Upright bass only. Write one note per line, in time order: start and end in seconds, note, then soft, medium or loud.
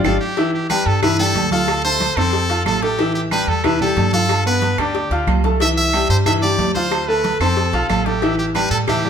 0.04 0.17 G1 medium
0.86 1.32 G2 loud
1.35 2.11 D2 medium
2.16 2.62 F2 loud
2.66 3.42 A1 loud
3.47 3.93 E2 medium
3.97 4.73 G2 loud
4.78 5.09 D2 medium
5.11 5.26 D2 medium
5.27 6.03 C2 medium
6.09 6.55 G2 loud
6.58 7.35 D2 medium
7.40 7.71 F2 medium
7.73 7.88 B1 medium
7.89 8.66 A1 medium
8.71 9.10 A2 medium